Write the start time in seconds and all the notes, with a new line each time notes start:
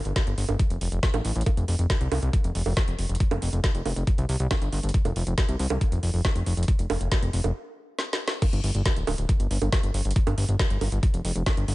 0.05 G1, closed hi-hat
0.16 kick, snare, closed hi-hat
0.27 G1, closed hi-hat
0.38 G1, open hi-hat
0.49 G1, closed hi-hat, high bongo
0.59 kick, closed hi-hat
0.70 F1, closed hi-hat
0.81 F1, open hi-hat
0.92 F1, closed hi-hat
1.03 kick, snare, closed hi-hat
1.14 A1, closed hi-hat, high bongo
1.25 A1, open hi-hat
1.36 A1, closed hi-hat
1.41 closed hi-hat
1.46 kick, closed hi-hat, high bongo
1.57 F1, closed hi-hat
1.68 F1, open hi-hat
1.79 F1, closed hi-hat
1.90 kick, snare, closed hi-hat
2.01 C2, closed hi-hat
2.12 C2, open hi-hat, high bongo
2.22 C2, closed hi-hat
2.33 kick, closed hi-hat
2.44 F1, closed hi-hat
2.55 F1, open hi-hat
2.66 F1, open hi-hat, high bongo
2.77 kick, snare, closed hi-hat
2.88 F1, closed hi-hat
2.99 F1, open hi-hat
3.09 F1, closed hi-hat
3.15 closed hi-hat
3.20 kick, closed hi-hat
3.31 F1, closed hi-hat, high bongo
3.42 F1, open hi-hat
3.53 F1, closed hi-hat
3.64 kick, snare, closed hi-hat
3.75 F1, closed hi-hat
3.85 F1, open hi-hat, high bongo
3.96 F1, closed hi-hat
4.07 kick, closed hi-hat
4.18 C2, closed hi-hat
4.29 C2, open hi-hat
4.40 C2, closed hi-hat
4.51 kick, snare, closed hi-hat, high bongo
4.62 G1, closed hi-hat
4.72 G1, open hi-hat
4.83 G1, closed hi-hat
4.89 closed hi-hat
4.94 kick, closed hi-hat
5.05 F1, closed hi-hat, high bongo
5.16 F1, open hi-hat
5.27 F1, closed hi-hat
5.38 kick, snare, closed hi-hat
5.49 C2, closed hi-hat
5.59 C2, open hi-hat
5.70 C2, closed hi-hat, high bongo
5.81 kick, closed hi-hat
5.92 F1, closed hi-hat
6.03 F1, open hi-hat
6.14 F1, open hi-hat
6.25 kick, snare, closed hi-hat, high bongo
6.36 F1, closed hi-hat
6.46 F1, open hi-hat
6.57 F1, closed hi-hat
6.63 closed hi-hat
6.68 kick, closed hi-hat
6.79 F1, closed hi-hat
6.90 F1, open hi-hat, high bongo
7.01 F1, closed hi-hat
7.12 kick, snare, closed hi-hat
7.22 F1, closed hi-hat
7.33 F1, open hi-hat
7.44 F1, closed hi-hat, high bongo
7.99 snare
8.13 snare
8.28 snare
8.42 kick, closed hi-hat, crash, high bongo
8.53 G1, closed hi-hat
8.64 G1, open hi-hat
8.75 G1, closed hi-hat
8.86 kick, snare, closed hi-hat
8.96 D1, closed hi-hat
9.07 D1, open hi-hat, high bongo
9.18 D1, closed hi-hat
9.29 kick, closed hi-hat
9.40 G1, closed hi-hat
9.51 G1, open hi-hat
9.62 G1, closed hi-hat, high bongo
9.73 kick, snare, closed hi-hat
9.83 G1, closed hi-hat
9.94 G1, open hi-hat
10.05 G1, closed hi-hat
10.11 closed hi-hat
10.16 kick, closed hi-hat
10.27 G1, closed hi-hat, high bongo
10.38 G1, open hi-hat
10.49 G1, closed hi-hat
10.59 kick, snare, closed hi-hat
10.70 G1, closed hi-hat
10.81 G1, open hi-hat, high bongo
10.92 G1, closed hi-hat
11.03 kick, closed hi-hat
11.14 F1, closed hi-hat
11.25 F1, open hi-hat
11.36 F1, closed hi-hat
11.46 kick, snare, closed hi-hat, high bongo
11.57 G1, closed hi-hat
11.68 G1, open hi-hat